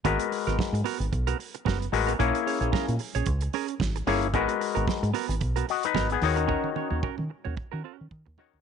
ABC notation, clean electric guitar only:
X:1
M:4/4
L:1/16
Q:"Swing 16ths" 1/4=112
K:G#m
V:1 name="Clean electric guitar"
[B,FA] z2 [B,FA] z2 [B,FA] z2 [B,FA] z2 [B,FA] z2 [B,FA] | [CGA] z [CGc] [CGc] [CGA] z2 [CGc] z2 [CGA] z3 [CGA] z | [B,FA] z2 [B,FA] z2 [B,FA] z2 [B,FA] z2 [B,FA] z2 [CFA] | [CFA] z [CFc] [CFc] [CFA] z2 [CFc] z [CFA] [CFA] z3 [CFA] z |]